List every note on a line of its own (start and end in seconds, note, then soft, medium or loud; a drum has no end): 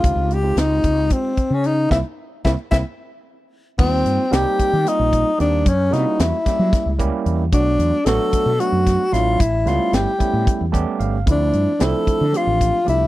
0.00 0.15 C#2 medium
0.00 0.36 G#3 medium
0.00 0.37 D#4 medium
0.00 0.35 F4 medium
0.00 kick loud
0.00 closed hi-hat medium
0.15 0.52 C#2 medium
0.30 0.60 G4 medium
0.30 closed hi-hat medium
0.42 1.32 G#3 medium
0.42 1.32 C4 medium
0.42 1.32 D#4 medium
0.42 1.32 F4 medium
0.42 1.33 G4 medium
0.56 0.81 C#2 medium
0.56 1.14 D#4 medium
0.56 snare medium
0.56 closed hi-hat medium
0.83 1.07 C#2 medium
0.83 kick medium
0.83 closed hi-hat medium
1.10 1.56 C4 medium
1.10 kick medium
1.10 closed hi-hat medium
1.37 kick medium
1.37 closed hi-hat soft
1.50 1.86 C#3 medium
1.50 1.68 C#4 medium
1.64 1.91 D#4 medium
1.64 closed hi-hat soft
1.90 2.01 C2 medium
1.90 1.99 A#3 medium
1.90 2.00 C4 medium
1.90 2.00 E4 medium
1.90 1.98 E4 medium
1.90 kick medium
1.90 snare medium
2.45 2.55 C2 medium
2.45 2.54 A#3 medium
2.45 2.54 C4 medium
2.45 2.51 E4 medium
2.45 2.54 E4 medium
2.45 kick medium
2.45 snare medium
2.71 2.82 C2 medium
2.71 2.81 A#3 medium
2.71 2.81 C4 medium
2.71 2.78 E4 medium
2.71 2.81 E4 medium
2.71 kick medium
2.71 snare medium
3.78 4.02 D#2 loud
3.78 4.23 G3 medium
3.78 4.23 A#3 medium
3.78 4.34 C4 loud
3.78 4.23 C4 medium
3.78 4.23 D#4 medium
3.78 4.24 F4 medium
3.78 kick loud
3.78 crash medium
4.05 4.17 G2 medium
4.05 closed hi-hat medium
4.31 4.44 C2 medium
4.31 4.76 G3 medium
4.31 4.76 A#3 medium
4.31 4.76 C4 medium
4.31 4.77 D#4 medium
4.31 4.90 G4 medium
4.31 4.77 G4 loud
4.31 snare loud
4.31 closed hi-hat medium
4.59 muted fretless electric bass stroke soft
4.59 kick medium
4.59 closed hi-hat medium
4.73 4.84 D#3 medium
4.84 5.29 G3 medium
4.84 5.29 A#3 medium
4.84 5.30 C4 medium
4.84 5.30 D#4 medium
4.84 5.30 F4 medium
4.84 closed hi-hat medium
4.88 5.40 D#4 medium
4.99 5.23 A#1 medium
5.13 kick medium
5.13 closed hi-hat medium
5.38 5.63 D#2 medium
5.38 5.65 G3 medium
5.38 5.66 A#3 medium
5.38 5.66 C4 medium
5.38 5.70 D4 medium
5.38 5.66 D#4 medium
5.38 5.66 G4 medium
5.38 closed hi-hat medium
5.66 5.90 F#2 loud
5.66 5.94 C#4 medium
5.66 kick loud
5.66 closed hi-hat medium
5.90 6.04 C3 medium
5.90 6.35 G3 medium
5.90 6.36 A#3 medium
5.90 6.36 C#4 medium
5.90 6.22 D#4 medium
5.90 6.37 E4 medium
5.90 6.37 F#4 medium
5.90 snare soft
5.90 closed hi-hat medium
6.19 6.31 E2 medium
6.19 7.00 E4 medium
6.19 snare loud
6.19 closed hi-hat medium
6.45 6.90 G3 medium
6.45 6.90 A#3 medium
6.45 6.90 C#4 medium
6.45 6.90 E4 medium
6.45 6.91 G4 medium
6.45 muted fretless electric bass stroke soft
6.45 kick medium
6.45 snare soft
6.45 closed hi-hat medium
6.59 6.71 F#3 medium
6.73 kick loud
6.73 snare soft
6.73 closed hi-hat medium
6.86 7.09 C#2 medium
6.98 7.43 G3 medium
6.98 7.43 A#3 medium
6.98 7.43 C#4 medium
6.98 7.44 E4 medium
6.98 7.44 G4 medium
6.98 kick medium
6.98 closed hi-hat medium
7.26 7.49 E2 medium
7.26 closed hi-hat medium
7.52 7.76 B1 medium
7.52 7.97 F#3 medium
7.52 7.97 A3 medium
7.52 7.97 B3 medium
7.52 8.07 D4 medium
7.52 7.97 D4 medium
7.52 7.97 F#4 medium
7.52 kick loud
7.52 closed hi-hat medium
7.79 7.91 E2 medium
7.79 closed hi-hat medium
8.06 8.18 A1 loud
8.06 8.50 F#3 medium
8.06 8.50 A3 medium
8.06 8.51 B3 medium
8.06 8.51 D4 medium
8.06 8.51 F#4 loud
8.06 8.62 A4 loud
8.06 snare loud
8.06 closed hi-hat medium
8.33 muted fretless electric bass stroke soft
8.33 kick medium
8.33 closed hi-hat medium
8.46 8.58 B2 medium
8.59 9.03 F#3 medium
8.59 9.04 A3 medium
8.59 9.04 B3 medium
8.59 9.04 D4 medium
8.59 9.14 F#4 medium
8.59 9.04 F#4 medium
8.59 closed hi-hat medium
8.72 8.96 F#2 medium
8.86 kick medium
8.86 snare soft
8.86 closed hi-hat medium
9.12 9.36 A1 medium
9.12 9.39 F#3 medium
9.12 9.39 A3 medium
9.12 9.40 B3 medium
9.12 9.40 D4 medium
9.12 9.40 E4 medium
9.12 9.42 F4 medium
9.12 snare soft
9.12 closed hi-hat medium
9.40 9.63 A1 loud
9.40 9.69 E4 medium
9.40 kick loud
9.40 closed hi-hat medium
9.65 9.78 C#2 medium
9.65 10.10 G3 medium
9.65 10.10 A3 medium
9.65 10.11 B3 medium
9.65 10.11 C#4 medium
9.65 10.11 E4 medium
9.65 9.96 F4 medium
9.65 snare soft
9.65 closed hi-hat medium
9.93 10.05 G1 medium
9.93 10.74 G4 medium
9.93 snare loud
9.93 closed hi-hat medium
10.19 10.63 G3 medium
10.19 10.64 A3 medium
10.19 10.64 B3 medium
10.19 10.64 C#4 medium
10.19 10.64 E4 medium
10.19 muted fretless electric bass stroke soft
10.19 kick medium
10.19 closed hi-hat medium
10.33 10.45 A2 medium
10.47 kick loud
10.47 closed hi-hat medium
10.61 10.84 E2 medium
10.72 11.17 G3 medium
10.72 11.17 A3 medium
10.72 11.17 B3 medium
10.72 11.17 C#4 medium
10.72 11.18 G4 loud
10.72 10.98 A5 medium
10.72 kick medium
10.72 closed hi-hat medium
10.99 11.23 G1 medium
10.99 11.25 F5 medium
10.99 closed hi-hat medium
11.26 11.50 D2 medium
11.26 11.71 F3 medium
11.26 11.71 A3 medium
11.26 11.71 C4 medium
11.26 11.71 D4 medium
11.26 11.72 E4 medium
11.26 kick medium
11.26 closed hi-hat medium
11.31 11.86 D4 medium
11.53 11.65 G2 medium
11.53 closed hi-hat soft
11.79 11.92 C2 medium
11.79 12.24 F3 medium
11.79 12.24 A3 medium
11.79 12.25 C4 medium
11.79 12.25 D4 medium
11.79 12.25 E4 medium
11.79 snare loud
11.79 closed hi-hat medium
11.84 12.38 A4 medium
12.07 muted fretless electric bass stroke soft
12.07 kick medium
12.07 closed hi-hat medium
12.21 12.32 D3 medium
12.32 12.77 F3 medium
12.32 12.77 A3 medium
12.32 12.77 C4 medium
12.32 12.78 D4 medium
12.32 12.78 G4 medium
12.32 closed hi-hat medium
12.37 12.89 F4 medium
12.47 12.71 A1 medium
12.61 kick medium
12.61 closed hi-hat medium
12.85 13.07 C2 medium
12.85 13.07 F3 medium
12.85 13.07 A3 medium
12.85 13.07 C4 medium
12.85 13.07 D4 medium
12.85 13.07 G4 medium
12.85 closed hi-hat medium
12.89 13.07 E4 medium